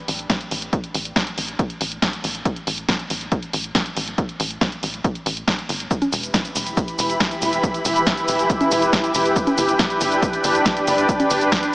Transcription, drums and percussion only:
0.08 open hi-hat
0.19 closed hi-hat
0.30 kick, snare, closed hi-hat
0.41 closed hi-hat
0.51 open hi-hat
0.62 closed hi-hat
0.73 kick, closed hi-hat
0.84 closed hi-hat
0.94 open hi-hat
1.05 closed hi-hat
1.16 kick, snare, closed hi-hat
1.27 closed hi-hat
1.38 open hi-hat
1.48 closed hi-hat
1.59 kick, closed hi-hat
1.70 closed hi-hat
1.81 open hi-hat
1.92 closed hi-hat
2.02 kick, snare, closed hi-hat
2.13 closed hi-hat
2.24 open hi-hat
2.35 closed hi-hat
2.45 kick, closed hi-hat
2.56 closed hi-hat
2.67 open hi-hat
2.78 closed hi-hat
2.89 kick, snare, closed hi-hat
2.99 closed hi-hat
3.10 open hi-hat
3.21 closed hi-hat
3.32 kick, closed hi-hat
3.42 closed hi-hat
3.53 open hi-hat
3.64 closed hi-hat
3.75 kick, snare, closed hi-hat
3.86 closed hi-hat
3.97 open hi-hat
4.08 closed hi-hat
4.18 kick, closed hi-hat
4.29 closed hi-hat
4.40 open hi-hat
4.51 closed hi-hat
4.61 kick, snare, closed hi-hat
4.72 closed hi-hat
4.83 open hi-hat
4.94 closed hi-hat
5.04 kick, closed hi-hat
5.15 closed hi-hat
5.26 open hi-hat
5.37 closed hi-hat
5.48 kick, snare, closed hi-hat
5.59 closed hi-hat
5.69 open hi-hat
5.80 closed hi-hat
5.91 kick, closed hi-hat, shaker
6.02 closed hi-hat, high conga, shaker
6.13 open hi-hat, shaker
6.23 closed hi-hat, shaker
6.34 kick, snare, closed hi-hat, shaker
6.45 closed hi-hat, shaker
6.56 open hi-hat, shaker
6.66 closed hi-hat, shaker
6.77 kick, closed hi-hat, shaker
6.88 closed hi-hat, shaker
6.99 open hi-hat, shaker
7.10 closed hi-hat, shaker
7.20 kick, snare, closed hi-hat, shaker
7.31 closed hi-hat, shaker
7.42 open hi-hat, shaker
7.53 closed hi-hat, shaker
7.63 kick, closed hi-hat, shaker
7.74 closed hi-hat, shaker
7.85 open hi-hat, shaker
7.96 closed hi-hat, shaker
8.07 kick, snare, closed hi-hat, shaker
8.17 closed hi-hat, shaker
8.28 open hi-hat, shaker
8.39 closed hi-hat, shaker
8.50 kick, closed hi-hat, shaker
8.61 closed hi-hat, high conga, shaker
8.71 open hi-hat, shaker
8.82 closed hi-hat, shaker
8.93 kick, snare, closed hi-hat, shaker
9.04 closed hi-hat, shaker
9.15 open hi-hat, shaker
9.25 closed hi-hat, shaker
9.36 kick, closed hi-hat, shaker
9.47 closed hi-hat, high conga, shaker
9.58 open hi-hat, shaker
9.69 closed hi-hat, shaker
9.79 kick, snare, closed hi-hat, shaker
9.90 closed hi-hat, shaker
10.01 open hi-hat, shaker
10.12 closed hi-hat, shaker
10.22 kick, closed hi-hat, shaker
10.33 closed hi-hat, shaker
10.44 open hi-hat, shaker
10.55 closed hi-hat, shaker
10.66 kick, snare, closed hi-hat, shaker
10.77 closed hi-hat, shaker
10.87 open hi-hat, shaker
10.98 closed hi-hat, shaker
11.09 kick, closed hi-hat, shaker
11.20 closed hi-hat, high conga, shaker
11.30 open hi-hat, shaker
11.41 closed hi-hat, shaker
11.52 kick, snare, closed hi-hat, shaker
11.63 closed hi-hat, shaker

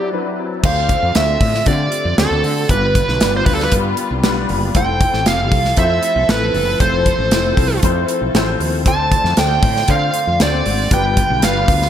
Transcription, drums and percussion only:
0.64 kick, crash
0.89 kick, closed hi-hat
1.15 snare, closed hi-hat
1.41 kick, open hi-hat
1.54 snare
1.66 kick, closed hi-hat
1.92 closed hi-hat
2.18 snare, closed hi-hat
2.44 open hi-hat
2.69 kick, closed hi-hat
2.95 kick, closed hi-hat
3.08 snare
3.21 snare, closed hi-hat
3.46 kick, open hi-hat
3.60 snare
3.72 kick, closed hi-hat
3.97 closed hi-hat
4.24 snare, closed hi-hat
4.49 open hi-hat
4.75 kick, closed hi-hat
5.01 kick, closed hi-hat
5.14 snare
5.26 snare, closed hi-hat
5.52 kick, open hi-hat
5.65 snare
5.77 kick, closed hi-hat
6.03 closed hi-hat
6.29 snare, closed hi-hat
6.54 open hi-hat
6.80 kick, closed hi-hat
7.06 kick, closed hi-hat
7.31 snare, closed hi-hat
7.57 kick, open hi-hat
7.83 kick, closed hi-hat
8.08 closed hi-hat
8.35 snare, closed hi-hat
8.60 open hi-hat
8.86 kick, closed hi-hat
9.12 kick, closed hi-hat
9.25 snare
9.37 snare, closed hi-hat
9.63 kick, open hi-hat
9.76 snare
9.88 kick, closed hi-hat
10.14 closed hi-hat
10.40 snare, closed hi-hat
10.66 open hi-hat
10.91 kick, closed hi-hat
11.17 kick, closed hi-hat
11.42 snare, closed hi-hat
11.68 kick, open hi-hat
11.82 snare

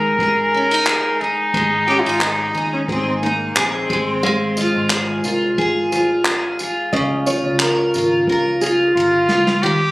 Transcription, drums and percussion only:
0.19 kick
0.87 clap
1.54 kick
2.21 clap
2.88 kick
3.56 clap
3.90 kick
4.57 tambourine
4.90 clap
5.24 tambourine
5.58 kick
5.92 tambourine
6.25 clap
6.59 tambourine
6.93 kick
7.26 tambourine
7.60 clap
7.94 tambourine
8.27 kick
8.61 tambourine
9.29 snare
9.47 snare

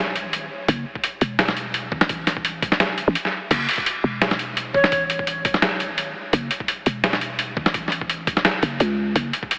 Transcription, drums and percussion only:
0.16 closed hi-hat
0.33 closed hi-hat
0.68 kick, closed hi-hat
0.95 kick
1.04 closed hi-hat
1.21 closed hi-hat
1.39 snare, closed hi-hat
1.48 snare
1.57 closed hi-hat
1.74 closed hi-hat
1.92 kick
2.01 snare
2.09 kick, closed hi-hat
2.27 snare, closed hi-hat
2.37 kick
2.45 closed hi-hat
2.62 kick, closed hi-hat
2.72 snare
2.80 snare, closed hi-hat
2.98 closed hi-hat
3.15 closed hi-hat
3.25 snare
3.51 kick, closed hi-hat, crash
3.69 closed hi-hat
3.71 closed hi-hat
3.73 closed hi-hat
3.76 kick, closed hi-hat
3.78 closed hi-hat
3.80 closed hi-hat
3.82 closed hi-hat
3.84 closed hi-hat
3.86 closed hi-hat
4.22 snare, closed hi-hat
4.31 snare
4.39 closed hi-hat
4.57 closed hi-hat
4.74 kick
4.84 snare
4.92 kick, closed hi-hat
5.10 closed hi-hat
5.19 kick
5.27 closed hi-hat
5.45 kick, closed hi-hat
5.54 snare
5.62 snare, closed hi-hat
5.80 closed hi-hat
5.98 closed hi-hat
6.33 kick, closed hi-hat
6.51 closed hi-hat
6.60 kick
6.68 closed hi-hat
6.86 closed hi-hat
7.04 snare, closed hi-hat
7.13 snare
7.21 closed hi-hat
7.39 closed hi-hat
7.57 kick
7.66 snare
7.74 kick, closed hi-hat
7.88 snare
7.92 closed hi-hat
8.01 kick
8.10 closed hi-hat
8.27 kick, closed hi-hat
8.37 snare
8.45 snare, closed hi-hat
8.63 closed hi-hat
8.80 closed hi-hat
9.16 kick, closed hi-hat
9.33 closed hi-hat
9.43 kick
9.51 closed hi-hat

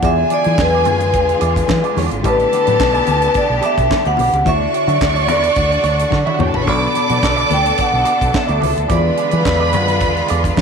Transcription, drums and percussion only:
0.02 kick, closed hi-hat, muted conga
0.30 closed hi-hat, muted conga
0.44 closed hi-hat, high conga
0.58 kick, snare, clap, muted conga, high conga
0.85 closed hi-hat, low conga
1.00 closed hi-hat
1.13 kick, closed hi-hat
1.29 closed hi-hat
1.41 closed hi-hat
1.56 kick, closed hi-hat
1.68 kick, snare, clap, muted conga, high conga
1.84 closed hi-hat
1.97 snare, open hi-hat, muted conga, low conga
2.11 closed hi-hat
2.24 kick, closed hi-hat, muted conga
2.39 closed hi-hat
2.52 closed hi-hat, muted conga
2.67 closed hi-hat, high conga
2.80 kick, snare, clap, muted conga, high conga
2.95 closed hi-hat
3.07 closed hi-hat, low conga
3.22 closed hi-hat
3.34 kick, closed hi-hat
3.62 closed hi-hat, muted conga
3.78 kick, closed hi-hat
3.91 kick, snare, clap, high conga
4.05 closed hi-hat
4.17 open hi-hat, muted conga, low conga
4.33 closed hi-hat
4.46 kick, closed hi-hat, muted conga, low conga
4.74 closed hi-hat
4.88 closed hi-hat, high conga
5.01 kick, snare, clap, high conga
5.16 closed hi-hat
5.28 closed hi-hat, muted conga, low conga
5.43 closed hi-hat
5.56 kick, closed hi-hat
5.72 closed hi-hat
5.83 closed hi-hat, muted conga
5.99 closed hi-hat
6.10 kick, snare, high conga
6.27 high tom
6.39 mid tom, low conga
6.54 floor tom
6.67 kick, splash, muted conga
6.95 closed hi-hat, muted conga
7.09 closed hi-hat, high conga
7.22 kick, snare, clap, high conga
7.38 closed hi-hat
7.50 closed hi-hat, low conga
7.66 closed hi-hat
7.78 kick, closed hi-hat, muted conga
8.05 closed hi-hat
8.21 kick, closed hi-hat
8.33 kick, snare, clap, high conga
8.48 closed hi-hat
8.62 open hi-hat, muted conga, low conga
8.77 closed hi-hat
8.89 kick, closed hi-hat, muted conga
9.17 closed hi-hat
9.31 closed hi-hat, high conga
9.45 kick, snare, clap, muted conga, high conga
9.73 closed hi-hat, muted conga, low conga
9.88 closed hi-hat
10.00 kick, closed hi-hat
10.17 closed hi-hat
10.28 closed hi-hat
10.44 kick, closed hi-hat
10.57 kick, snare, clap, muted conga, high conga

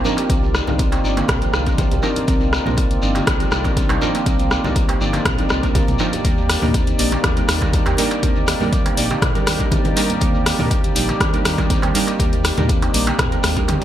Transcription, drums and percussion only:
0.04 low conga, shekere
0.17 closed hi-hat, darbuka tek, shekere
0.30 kick, closed hi-hat, high conga, shekere
0.44 shekere
0.55 cross-stick, shekere
0.67 high conga, low conga, shekere
0.79 kick, closed hi-hat, shekere
0.92 closed hi-hat, darbuka ka, darbuka tek, shekere
1.05 shekere
1.17 closed hi-hat, high conga, darbuka tek, shekere
1.28 kick, cross-stick, closed hi-hat, mid tom, low conga, shekere
1.42 closed hi-hat, shekere
1.54 cross-stick, shekere
1.66 kick, closed hi-hat, shekere
1.78 kick, closed hi-hat, high conga, shekere
1.91 closed hi-hat, low conga, shekere
2.03 darbuka tek, shekere
2.16 closed hi-hat, low conga, shekere
2.28 kick, closed hi-hat, high conga, shekere
2.40 shekere
2.53 cross-stick, shekere
2.66 mid tom, high conga, low conga, shekere
2.77 kick, closed hi-hat, shekere
2.91 closed hi-hat, shekere
3.02 shekere
3.15 closed hi-hat, darbuka tek, high conga, shekere
3.27 kick, cross-stick, closed hi-hat, high conga, shekere
3.40 closed hi-hat, shekere
3.51 cross-stick, shekere
3.64 kick, closed hi-hat, darbuka ka, high conga, shekere
3.77 kick, closed hi-hat, shekere
3.89 closed hi-hat, darbuka ka, darbuka tek, shekere
4.02 low conga, shekere
4.15 closed hi-hat, darbuka tek, shekere
4.26 kick, closed hi-hat, high conga, shekere
4.39 closed hi-hat, shekere
4.51 cross-stick, shekere
4.64 high conga, low conga, shekere
4.76 kick, closed hi-hat, shekere
4.89 closed hi-hat, darbuka ka, darbuka tek, shekere
5.01 shekere
5.13 closed hi-hat, darbuka tek, high conga, shekere
5.25 kick, cross-stick, closed hi-hat, mid tom, low conga, shekere
5.38 closed hi-hat, shekere
5.49 cross-stick, shekere
5.63 kick, closed hi-hat, shekere
5.75 kick, closed hi-hat, high conga, shekere
5.87 closed hi-hat, mid tom, low conga, shekere
5.99 darbuka tek, shekere
6.13 closed hi-hat, low conga, shekere
6.25 kick, closed hi-hat, high conga, shekere
6.38 shekere
6.49 cross-stick, open hi-hat, shekere
6.62 mid tom, high conga, low conga, shekere
6.74 kick, closed hi-hat, shekere
6.87 closed hi-hat, shekere
6.99 open hi-hat, shekere
7.12 closed hi-hat, high conga, darbuka tek, shekere
7.24 kick, cross-stick, closed hi-hat, high conga, shekere
7.37 closed hi-hat, shekere
7.48 cross-stick, open hi-hat, shekere
7.62 kick, closed hi-hat, darbuka ka, high conga, shekere
7.73 kick, closed hi-hat, shekere
7.86 closed hi-hat, darbuka ka, darbuka tek, shekere
7.97 open hi-hat, low conga, shekere
8.10 closed hi-hat, darbuka tek, shekere
8.23 kick, closed hi-hat, high conga, shekere
8.36 shekere
8.47 cross-stick, open hi-hat, shekere
8.60 high conga, low conga, shekere
8.73 kick, closed hi-hat, shekere
8.86 closed hi-hat, darbuka ka, darbuka tek, shekere
8.97 open hi-hat, shekere
9.10 closed hi-hat, high conga, darbuka tek, shekere
9.22 kick, cross-stick, closed hi-hat, mid tom, low conga, shekere
9.35 closed hi-hat, shekere
9.47 cross-stick, open hi-hat, shekere
9.60 kick, closed hi-hat, shekere
9.71 kick, closed hi-hat, high conga, shekere
9.84 closed hi-hat, low conga, shekere
9.97 open hi-hat, darbuka tek, shekere
10.10 closed hi-hat, low conga, shekere
10.21 kick, closed hi-hat, high conga, shekere
10.34 shekere
10.46 cross-stick, open hi-hat, shekere
10.59 mid tom, high conga, low conga, shekere
10.71 kick, closed hi-hat, shekere
10.84 closed hi-hat, shekere
10.96 open hi-hat, shekere
11.08 closed hi-hat, high conga, darbuka tek, shekere
11.20 kick, cross-stick, closed hi-hat, high conga, shekere
11.33 closed hi-hat, shekere
11.45 cross-stick, open hi-hat, shekere
11.58 kick, closed hi-hat, darbuka ka, high conga, shekere
11.70 kick, closed hi-hat, shekere
11.82 closed hi-hat, darbuka ka, darbuka tek, shekere
11.94 open hi-hat, low conga, shekere
12.07 closed hi-hat, darbuka tek, shekere
12.19 kick, closed hi-hat, high conga, shekere
12.33 closed hi-hat, shekere
12.44 cross-stick, open hi-hat, shekere
12.57 closed hi-hat, mid tom, high conga, low conga, shekere
12.69 kick, closed hi-hat, shekere
12.82 closed hi-hat, darbuka ka, darbuka tek, shekere
12.94 open hi-hat, shekere
13.07 closed hi-hat, darbuka ka, high conga, darbuka tek, shekere
13.19 kick, cross-stick, closed hi-hat, mid tom, low conga, shekere
13.32 closed hi-hat, shekere
13.43 cross-stick, open hi-hat, high tom, shekere
13.57 kick, closed hi-hat, shekere
13.68 closed hi-hat, mid tom, darbuka tek, high conga, shekere
13.81 shekere

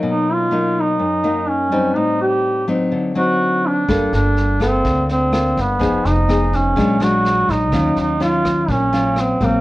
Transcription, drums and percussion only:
3.89 kick, cross-stick, snare
4.13 snare
4.37 snare
4.61 kick, cross-stick, snare
4.85 kick, snare
5.09 snare
5.33 cross-stick, snare
5.57 kick, snare
5.81 kick, snare
6.05 snare
6.29 cross-stick, snare
6.53 kick, snare
6.77 kick, snare
7.01 cross-stick, snare
7.25 snare
7.49 kick, snare
7.72 kick, cross-stick, snare
7.97 snare
8.21 snare
8.45 kick, cross-stick, snare
8.69 kick, snare
8.93 snare
9.16 cross-stick, snare
9.41 kick, snare

